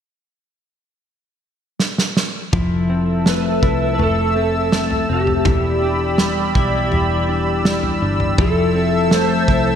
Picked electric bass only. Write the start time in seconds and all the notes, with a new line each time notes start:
2.53 F1
3.63 C2
4.00 F1
5.10 F1
5.45 E1
6.55 B1
6.92 E1
8.02 G1
8.38 F1
9.48 C2